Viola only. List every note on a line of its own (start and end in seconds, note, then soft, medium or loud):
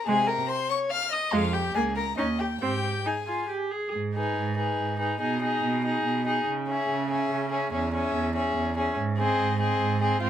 0.07 0.27 G#3 soft
1.32 1.52 G#3 soft
1.74 1.95 A#3 soft
2.17 2.38 C#4 soft
2.61 2.82 C4 soft
3.05 3.13 D#4 soft
3.27 3.48 F4 soft
3.49 3.72 G4 soft
3.71 3.93 G#4 soft
4.14 4.56 D#4 soft
4.57 4.98 D#4 soft
4.99 5.19 D#4 soft
5.20 5.41 D#4 soft
5.41 5.83 D#4 soft
5.84 6.25 D#4 soft
6.26 6.46 D#4 soft
6.68 7.09 C#4 soft
7.10 7.51 C#4 soft
7.51 7.72 C#4 soft
7.73 7.92 C#4 soft
7.93 8.34 C#4 medium
8.35 8.75 C#4 soft
8.77 8.97 C#4 medium
9.18 9.59 C4 medium
9.60 10.00 C4 soft
10.01 10.20 C4 medium
10.21 10.30 C4 medium